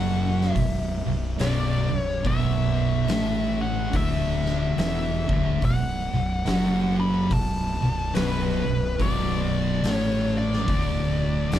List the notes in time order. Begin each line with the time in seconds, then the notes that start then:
Already playing: F#1 F#2 F#3 F#5
0.41 snare
0.53 B0 B1 E5, kick, open hi-hat
1.06 B0 B1
1.39 B0 B1 B2 D5, snare, open hi-hat
1.90 B0 B1
2.00 C#5
2.23 B0 B1 B2 E5, kick, open hi-hat
3.08 A1 A2 A3, snare, open hi-hat
3.61 F#5
3.93 D1 D2 D3 E5, kick, open hi-hat
4.46 snare
4.77 E1 E2 E3 E5, snare, open hi-hat
5.28 D1 D2 D3, kick
5.62 B0 B1 F#5, kick, open hi-hat
6.13 B0 B1
6.45 F#1 F#2 F#3, snare, open hi-hat
7.00 B5
7.31 B0 B1 A5, kick, open hi-hat
7.82 B0 B1
8.14 B0 B1 B2 B4, snare, open hi-hat
8.66 B0 B1
8.99 B0 B1 B2 D5, kick, open hi-hat
9.83 A1 A2 A3, snare, open hi-hat
9.92 C#5
10.38 D5
10.53 snare
10.67 D1 D2 D3, kick, open hi-hat
11.50 E1 E2 E3, snare, open hi-hat